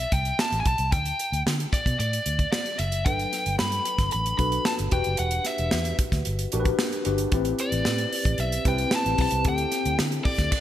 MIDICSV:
0, 0, Header, 1, 5, 480
1, 0, Start_track
1, 0, Tempo, 533333
1, 832, Time_signature, 4, 2, 24, 8
1, 9543, End_track
2, 0, Start_track
2, 0, Title_t, "Lead electric guitar"
2, 0, Program_c, 0, 29
2, 0, Note_on_c, 0, 76, 80
2, 115, Note_on_c, 0, 79, 89
2, 122, Note_off_c, 0, 76, 0
2, 360, Note_off_c, 0, 79, 0
2, 364, Note_on_c, 0, 81, 82
2, 526, Note_off_c, 0, 81, 0
2, 541, Note_on_c, 0, 80, 56
2, 596, Note_off_c, 0, 80, 0
2, 605, Note_on_c, 0, 81, 91
2, 825, Note_off_c, 0, 81, 0
2, 829, Note_on_c, 0, 79, 80
2, 1276, Note_off_c, 0, 79, 0
2, 1557, Note_on_c, 0, 74, 65
2, 1783, Note_off_c, 0, 74, 0
2, 1793, Note_on_c, 0, 74, 73
2, 2257, Note_off_c, 0, 74, 0
2, 2268, Note_on_c, 0, 74, 73
2, 2493, Note_off_c, 0, 74, 0
2, 2513, Note_on_c, 0, 76, 76
2, 2743, Note_on_c, 0, 79, 78
2, 2759, Note_off_c, 0, 76, 0
2, 3194, Note_off_c, 0, 79, 0
2, 3231, Note_on_c, 0, 83, 83
2, 3678, Note_off_c, 0, 83, 0
2, 3713, Note_on_c, 0, 83, 94
2, 3928, Note_off_c, 0, 83, 0
2, 3939, Note_on_c, 0, 83, 88
2, 4186, Note_on_c, 0, 81, 83
2, 4193, Note_off_c, 0, 83, 0
2, 4252, Note_off_c, 0, 81, 0
2, 4434, Note_on_c, 0, 79, 80
2, 4666, Note_off_c, 0, 79, 0
2, 4670, Note_on_c, 0, 78, 78
2, 4918, Note_off_c, 0, 78, 0
2, 4918, Note_on_c, 0, 76, 73
2, 5362, Note_off_c, 0, 76, 0
2, 6843, Note_on_c, 0, 74, 81
2, 7556, Note_off_c, 0, 74, 0
2, 7560, Note_on_c, 0, 76, 90
2, 7780, Note_off_c, 0, 76, 0
2, 7812, Note_on_c, 0, 79, 93
2, 8049, Note_off_c, 0, 79, 0
2, 8059, Note_on_c, 0, 81, 92
2, 8270, Note_off_c, 0, 81, 0
2, 8293, Note_on_c, 0, 81, 87
2, 8529, Note_off_c, 0, 81, 0
2, 8536, Note_on_c, 0, 79, 85
2, 8971, Note_off_c, 0, 79, 0
2, 9222, Note_on_c, 0, 74, 85
2, 9450, Note_off_c, 0, 74, 0
2, 9469, Note_on_c, 0, 74, 102
2, 9543, Note_off_c, 0, 74, 0
2, 9543, End_track
3, 0, Start_track
3, 0, Title_t, "Tine electric piano"
3, 0, Program_c, 1, 4
3, 2748, Note_on_c, 1, 62, 61
3, 2752, Note_on_c, 1, 54, 59
3, 2755, Note_on_c, 1, 69, 59
3, 2758, Note_on_c, 1, 71, 76
3, 2910, Control_c, 1, 64, 127
3, 3607, Note_off_c, 1, 62, 0
3, 3609, Note_off_c, 1, 54, 0
3, 3611, Note_off_c, 1, 69, 0
3, 3612, Note_off_c, 1, 71, 0
3, 3941, Note_on_c, 1, 62, 66
3, 3949, Note_on_c, 1, 66, 66
3, 3952, Note_on_c, 1, 69, 62
3, 3954, Note_on_c, 1, 71, 79
3, 4375, Note_off_c, 1, 62, 0
3, 4379, Note_off_c, 1, 66, 0
3, 4381, Note_off_c, 1, 69, 0
3, 4382, Note_off_c, 1, 71, 0
3, 4422, Note_on_c, 1, 62, 64
3, 4424, Note_on_c, 1, 66, 62
3, 4426, Note_on_c, 1, 67, 62
3, 4435, Note_on_c, 1, 71, 75
3, 4443, Control_c, 1, 64, 0
3, 4582, Control_c, 1, 64, 127
3, 5285, Note_off_c, 1, 62, 0
3, 5286, Note_off_c, 1, 66, 0
3, 5287, Note_off_c, 1, 67, 0
3, 5291, Note_off_c, 1, 71, 0
3, 5876, Note_on_c, 1, 62, 84
3, 5876, Note_on_c, 1, 66, 75
3, 5882, Note_on_c, 1, 67, 78
3, 5885, Note_on_c, 1, 70, 77
3, 5936, Note_off_c, 1, 70, 0
3, 5938, Note_on_c, 1, 71, 101
3, 6303, Note_off_c, 1, 62, 0
3, 6303, Note_off_c, 1, 66, 0
3, 6306, Note_off_c, 1, 67, 0
3, 6334, Note_off_c, 1, 71, 0
3, 6348, Note_on_c, 1, 62, 75
3, 6352, Note_on_c, 1, 66, 65
3, 6353, Note_on_c, 1, 67, 62
3, 6355, Note_on_c, 1, 71, 76
3, 6565, Note_off_c, 1, 62, 0
3, 6567, Note_off_c, 1, 66, 0
3, 6567, Note_off_c, 1, 67, 0
3, 6568, Note_off_c, 1, 71, 0
3, 6594, Note_on_c, 1, 60, 80
3, 6595, Note_on_c, 1, 64, 75
3, 6604, Note_on_c, 1, 67, 68
3, 6605, Note_on_c, 1, 71, 87
3, 6606, Control_c, 1, 64, 0
3, 6764, Control_c, 1, 64, 127
3, 7450, Note_off_c, 1, 60, 0
3, 7451, Note_off_c, 1, 64, 0
3, 7456, Note_off_c, 1, 67, 0
3, 7456, Note_off_c, 1, 71, 0
3, 7787, Note_on_c, 1, 60, 76
3, 7792, Note_on_c, 1, 64, 64
3, 7795, Note_on_c, 1, 67, 66
3, 7797, Note_on_c, 1, 71, 86
3, 8219, Note_off_c, 1, 60, 0
3, 8221, Note_off_c, 1, 64, 0
3, 8223, Note_off_c, 1, 67, 0
3, 8223, Note_off_c, 1, 71, 0
3, 8263, Note_on_c, 1, 60, 57
3, 8267, Note_on_c, 1, 64, 54
3, 8269, Note_on_c, 1, 67, 58
3, 8273, Note_on_c, 1, 71, 61
3, 8482, Note_off_c, 1, 60, 0
3, 8484, Note_off_c, 1, 64, 0
3, 8485, Note_off_c, 1, 67, 0
3, 8487, Note_off_c, 1, 71, 0
3, 8502, Note_on_c, 1, 60, 68
3, 8507, Note_on_c, 1, 64, 60
3, 8511, Note_on_c, 1, 67, 67
3, 8512, Note_on_c, 1, 69, 67
3, 8524, Control_c, 1, 64, 0
3, 8665, Control_c, 1, 64, 127
3, 9364, Note_off_c, 1, 60, 0
3, 9367, Note_off_c, 1, 64, 0
3, 9369, Note_off_c, 1, 67, 0
3, 9369, Note_off_c, 1, 69, 0
3, 9485, Control_c, 1, 64, 0
3, 9543, End_track
4, 0, Start_track
4, 0, Title_t, "Fingered electric bass"
4, 0, Program_c, 2, 33
4, 113, Note_on_c, 2, 36, 83
4, 280, Note_off_c, 2, 36, 0
4, 471, Note_on_c, 2, 33, 73
4, 555, Note_off_c, 2, 33, 0
4, 595, Note_on_c, 2, 35, 68
4, 678, Note_off_c, 2, 35, 0
4, 709, Note_on_c, 2, 36, 78
4, 833, Note_off_c, 2, 36, 0
4, 833, Note_on_c, 2, 38, 87
4, 1000, Note_off_c, 2, 38, 0
4, 1191, Note_on_c, 2, 38, 82
4, 1275, Note_off_c, 2, 38, 0
4, 1316, Note_on_c, 2, 50, 82
4, 1482, Note_off_c, 2, 50, 0
4, 1674, Note_on_c, 2, 47, 85
4, 1757, Note_off_c, 2, 47, 0
4, 1795, Note_on_c, 2, 45, 72
4, 1962, Note_off_c, 2, 45, 0
4, 2035, Note_on_c, 2, 38, 69
4, 2202, Note_off_c, 2, 38, 0
4, 2515, Note_on_c, 2, 30, 85
4, 2753, Note_off_c, 2, 30, 0
4, 2753, Note_on_c, 2, 31, 92
4, 2920, Note_off_c, 2, 31, 0
4, 3118, Note_on_c, 2, 31, 76
4, 3200, Note_off_c, 2, 31, 0
4, 3244, Note_on_c, 2, 43, 85
4, 3408, Note_off_c, 2, 43, 0
4, 3586, Note_on_c, 2, 31, 75
4, 3672, Note_off_c, 2, 31, 0
4, 3729, Note_on_c, 2, 33, 71
4, 3891, Note_off_c, 2, 33, 0
4, 3949, Note_on_c, 2, 35, 75
4, 4118, Note_off_c, 2, 35, 0
4, 4319, Note_on_c, 2, 31, 79
4, 4400, Note_off_c, 2, 31, 0
4, 4431, Note_on_c, 2, 28, 87
4, 4515, Note_off_c, 2, 28, 0
4, 4561, Note_on_c, 2, 30, 79
4, 4642, Note_off_c, 2, 30, 0
4, 4677, Note_on_c, 2, 28, 92
4, 4843, Note_off_c, 2, 28, 0
4, 5033, Note_on_c, 2, 28, 93
4, 5117, Note_off_c, 2, 28, 0
4, 5158, Note_on_c, 2, 40, 92
4, 5324, Note_off_c, 2, 40, 0
4, 5510, Note_on_c, 2, 38, 80
4, 5594, Note_off_c, 2, 38, 0
4, 5642, Note_on_c, 2, 31, 85
4, 5807, Note_off_c, 2, 31, 0
4, 5882, Note_on_c, 2, 33, 78
4, 6047, Note_off_c, 2, 33, 0
4, 6358, Note_on_c, 2, 31, 78
4, 6524, Note_off_c, 2, 31, 0
4, 6595, Note_on_c, 2, 33, 98
4, 6762, Note_off_c, 2, 33, 0
4, 6950, Note_on_c, 2, 33, 87
4, 7035, Note_off_c, 2, 33, 0
4, 7076, Note_on_c, 2, 45, 84
4, 7243, Note_off_c, 2, 45, 0
4, 7429, Note_on_c, 2, 33, 82
4, 7514, Note_off_c, 2, 33, 0
4, 7546, Note_on_c, 2, 35, 91
4, 7716, Note_off_c, 2, 35, 0
4, 7791, Note_on_c, 2, 36, 74
4, 7959, Note_off_c, 2, 36, 0
4, 8154, Note_on_c, 2, 33, 73
4, 8238, Note_off_c, 2, 33, 0
4, 8268, Note_on_c, 2, 35, 80
4, 8354, Note_off_c, 2, 35, 0
4, 8390, Note_on_c, 2, 36, 81
4, 8475, Note_off_c, 2, 36, 0
4, 8507, Note_on_c, 2, 38, 95
4, 8677, Note_off_c, 2, 38, 0
4, 8871, Note_on_c, 2, 38, 88
4, 8955, Note_off_c, 2, 38, 0
4, 8997, Note_on_c, 2, 50, 93
4, 9164, Note_off_c, 2, 50, 0
4, 9351, Note_on_c, 2, 38, 77
4, 9435, Note_off_c, 2, 38, 0
4, 9543, End_track
5, 0, Start_track
5, 0, Title_t, "Drums"
5, 0, Note_on_c, 9, 42, 50
5, 86, Note_off_c, 9, 42, 0
5, 107, Note_on_c, 9, 42, 60
5, 109, Note_on_c, 9, 36, 85
5, 197, Note_off_c, 9, 42, 0
5, 199, Note_off_c, 9, 36, 0
5, 227, Note_on_c, 9, 42, 40
5, 317, Note_off_c, 9, 42, 0
5, 351, Note_on_c, 9, 38, 122
5, 441, Note_off_c, 9, 38, 0
5, 471, Note_on_c, 9, 42, 44
5, 561, Note_off_c, 9, 42, 0
5, 589, Note_on_c, 9, 42, 76
5, 591, Note_on_c, 9, 36, 82
5, 679, Note_off_c, 9, 42, 0
5, 681, Note_off_c, 9, 36, 0
5, 703, Note_on_c, 9, 42, 45
5, 793, Note_off_c, 9, 42, 0
5, 831, Note_on_c, 9, 42, 78
5, 832, Note_on_c, 9, 36, 115
5, 921, Note_off_c, 9, 42, 0
5, 922, Note_off_c, 9, 36, 0
5, 949, Note_on_c, 9, 42, 50
5, 1039, Note_off_c, 9, 42, 0
5, 1075, Note_on_c, 9, 42, 62
5, 1165, Note_off_c, 9, 42, 0
5, 1200, Note_on_c, 9, 42, 44
5, 1290, Note_off_c, 9, 42, 0
5, 1320, Note_on_c, 9, 38, 96
5, 1410, Note_off_c, 9, 38, 0
5, 1440, Note_on_c, 9, 42, 44
5, 1530, Note_off_c, 9, 42, 0
5, 1554, Note_on_c, 9, 36, 87
5, 1563, Note_on_c, 9, 42, 70
5, 1644, Note_off_c, 9, 36, 0
5, 1653, Note_off_c, 9, 42, 0
5, 1673, Note_on_c, 9, 36, 83
5, 1683, Note_on_c, 9, 42, 51
5, 1763, Note_off_c, 9, 36, 0
5, 1773, Note_off_c, 9, 42, 0
5, 1798, Note_on_c, 9, 42, 67
5, 1888, Note_off_c, 9, 42, 0
5, 1919, Note_on_c, 9, 42, 51
5, 2009, Note_off_c, 9, 42, 0
5, 2032, Note_on_c, 9, 42, 62
5, 2122, Note_off_c, 9, 42, 0
5, 2150, Note_on_c, 9, 42, 43
5, 2151, Note_on_c, 9, 36, 70
5, 2240, Note_off_c, 9, 42, 0
5, 2241, Note_off_c, 9, 36, 0
5, 2273, Note_on_c, 9, 38, 115
5, 2363, Note_off_c, 9, 38, 0
5, 2392, Note_on_c, 9, 42, 44
5, 2482, Note_off_c, 9, 42, 0
5, 2508, Note_on_c, 9, 42, 70
5, 2598, Note_off_c, 9, 42, 0
5, 2628, Note_on_c, 9, 42, 49
5, 2718, Note_off_c, 9, 42, 0
5, 2752, Note_on_c, 9, 36, 110
5, 2753, Note_on_c, 9, 42, 75
5, 2842, Note_off_c, 9, 36, 0
5, 2843, Note_off_c, 9, 42, 0
5, 2875, Note_on_c, 9, 42, 51
5, 2965, Note_off_c, 9, 42, 0
5, 2993, Note_on_c, 9, 38, 34
5, 2994, Note_on_c, 9, 42, 63
5, 3083, Note_off_c, 9, 38, 0
5, 3084, Note_off_c, 9, 42, 0
5, 3114, Note_on_c, 9, 42, 46
5, 3204, Note_off_c, 9, 42, 0
5, 3230, Note_on_c, 9, 38, 107
5, 3320, Note_off_c, 9, 38, 0
5, 3347, Note_on_c, 9, 42, 44
5, 3437, Note_off_c, 9, 42, 0
5, 3469, Note_on_c, 9, 42, 73
5, 3559, Note_off_c, 9, 42, 0
5, 3587, Note_on_c, 9, 36, 83
5, 3587, Note_on_c, 9, 38, 31
5, 3588, Note_on_c, 9, 42, 49
5, 3677, Note_off_c, 9, 36, 0
5, 3677, Note_off_c, 9, 38, 0
5, 3678, Note_off_c, 9, 42, 0
5, 3701, Note_on_c, 9, 42, 68
5, 3791, Note_off_c, 9, 42, 0
5, 3832, Note_on_c, 9, 42, 52
5, 3922, Note_off_c, 9, 42, 0
5, 3948, Note_on_c, 9, 42, 59
5, 3950, Note_on_c, 9, 36, 79
5, 4038, Note_off_c, 9, 42, 0
5, 4040, Note_off_c, 9, 36, 0
5, 4067, Note_on_c, 9, 42, 44
5, 4157, Note_off_c, 9, 42, 0
5, 4186, Note_on_c, 9, 38, 115
5, 4276, Note_off_c, 9, 38, 0
5, 4308, Note_on_c, 9, 42, 45
5, 4398, Note_off_c, 9, 42, 0
5, 4423, Note_on_c, 9, 42, 75
5, 4429, Note_on_c, 9, 36, 89
5, 4513, Note_off_c, 9, 42, 0
5, 4519, Note_off_c, 9, 36, 0
5, 4537, Note_on_c, 9, 42, 49
5, 4627, Note_off_c, 9, 42, 0
5, 4656, Note_on_c, 9, 42, 79
5, 4746, Note_off_c, 9, 42, 0
5, 4777, Note_on_c, 9, 42, 54
5, 4867, Note_off_c, 9, 42, 0
5, 4900, Note_on_c, 9, 38, 33
5, 4901, Note_on_c, 9, 42, 62
5, 4990, Note_off_c, 9, 38, 0
5, 4991, Note_off_c, 9, 42, 0
5, 5024, Note_on_c, 9, 42, 43
5, 5114, Note_off_c, 9, 42, 0
5, 5141, Note_on_c, 9, 38, 102
5, 5231, Note_off_c, 9, 38, 0
5, 5264, Note_on_c, 9, 42, 46
5, 5354, Note_off_c, 9, 42, 0
5, 5388, Note_on_c, 9, 42, 69
5, 5389, Note_on_c, 9, 36, 87
5, 5478, Note_off_c, 9, 42, 0
5, 5479, Note_off_c, 9, 36, 0
5, 5509, Note_on_c, 9, 36, 85
5, 5511, Note_on_c, 9, 38, 32
5, 5513, Note_on_c, 9, 42, 51
5, 5599, Note_off_c, 9, 36, 0
5, 5601, Note_off_c, 9, 38, 0
5, 5603, Note_off_c, 9, 42, 0
5, 5625, Note_on_c, 9, 42, 63
5, 5715, Note_off_c, 9, 42, 0
5, 5749, Note_on_c, 9, 42, 54
5, 5839, Note_off_c, 9, 42, 0
5, 5867, Note_on_c, 9, 42, 59
5, 5957, Note_off_c, 9, 42, 0
5, 5988, Note_on_c, 9, 42, 46
5, 5990, Note_on_c, 9, 36, 81
5, 6078, Note_off_c, 9, 42, 0
5, 6080, Note_off_c, 9, 36, 0
5, 6108, Note_on_c, 9, 38, 117
5, 6198, Note_off_c, 9, 38, 0
5, 6232, Note_on_c, 9, 42, 42
5, 6322, Note_off_c, 9, 42, 0
5, 6344, Note_on_c, 9, 42, 72
5, 6434, Note_off_c, 9, 42, 0
5, 6462, Note_on_c, 9, 42, 55
5, 6552, Note_off_c, 9, 42, 0
5, 6585, Note_on_c, 9, 42, 76
5, 6589, Note_on_c, 9, 36, 117
5, 6675, Note_off_c, 9, 42, 0
5, 6679, Note_off_c, 9, 36, 0
5, 6703, Note_on_c, 9, 42, 52
5, 6793, Note_off_c, 9, 42, 0
5, 6827, Note_on_c, 9, 42, 62
5, 6917, Note_off_c, 9, 42, 0
5, 6948, Note_on_c, 9, 42, 50
5, 7038, Note_off_c, 9, 42, 0
5, 7066, Note_on_c, 9, 38, 92
5, 7156, Note_off_c, 9, 38, 0
5, 7185, Note_on_c, 9, 42, 45
5, 7275, Note_off_c, 9, 42, 0
5, 7313, Note_on_c, 9, 46, 69
5, 7403, Note_off_c, 9, 46, 0
5, 7428, Note_on_c, 9, 36, 84
5, 7434, Note_on_c, 9, 42, 49
5, 7518, Note_off_c, 9, 36, 0
5, 7524, Note_off_c, 9, 42, 0
5, 7541, Note_on_c, 9, 42, 71
5, 7631, Note_off_c, 9, 42, 0
5, 7670, Note_on_c, 9, 42, 52
5, 7760, Note_off_c, 9, 42, 0
5, 7787, Note_on_c, 9, 42, 62
5, 7788, Note_on_c, 9, 36, 89
5, 7877, Note_off_c, 9, 42, 0
5, 7878, Note_off_c, 9, 36, 0
5, 7905, Note_on_c, 9, 42, 46
5, 7995, Note_off_c, 9, 42, 0
5, 8020, Note_on_c, 9, 38, 121
5, 8110, Note_off_c, 9, 38, 0
5, 8152, Note_on_c, 9, 42, 43
5, 8242, Note_off_c, 9, 42, 0
5, 8263, Note_on_c, 9, 46, 81
5, 8268, Note_on_c, 9, 36, 83
5, 8353, Note_off_c, 9, 46, 0
5, 8358, Note_off_c, 9, 36, 0
5, 8375, Note_on_c, 9, 42, 52
5, 8465, Note_off_c, 9, 42, 0
5, 8501, Note_on_c, 9, 42, 82
5, 8505, Note_on_c, 9, 36, 117
5, 8591, Note_off_c, 9, 42, 0
5, 8595, Note_off_c, 9, 36, 0
5, 8620, Note_on_c, 9, 42, 52
5, 8710, Note_off_c, 9, 42, 0
5, 8743, Note_on_c, 9, 38, 33
5, 8745, Note_on_c, 9, 42, 68
5, 8833, Note_off_c, 9, 38, 0
5, 8835, Note_off_c, 9, 42, 0
5, 8869, Note_on_c, 9, 42, 46
5, 8959, Note_off_c, 9, 42, 0
5, 8989, Note_on_c, 9, 38, 107
5, 9079, Note_off_c, 9, 38, 0
5, 9106, Note_on_c, 9, 42, 43
5, 9196, Note_off_c, 9, 42, 0
5, 9228, Note_on_c, 9, 36, 87
5, 9228, Note_on_c, 9, 46, 73
5, 9318, Note_off_c, 9, 36, 0
5, 9318, Note_off_c, 9, 46, 0
5, 9346, Note_on_c, 9, 36, 82
5, 9347, Note_on_c, 9, 38, 33
5, 9349, Note_on_c, 9, 42, 50
5, 9436, Note_off_c, 9, 36, 0
5, 9437, Note_off_c, 9, 38, 0
5, 9439, Note_off_c, 9, 42, 0
5, 9466, Note_on_c, 9, 49, 81
5, 9468, Note_on_c, 9, 36, 98
5, 9543, Note_off_c, 9, 36, 0
5, 9543, Note_off_c, 9, 49, 0
5, 9543, End_track
0, 0, End_of_file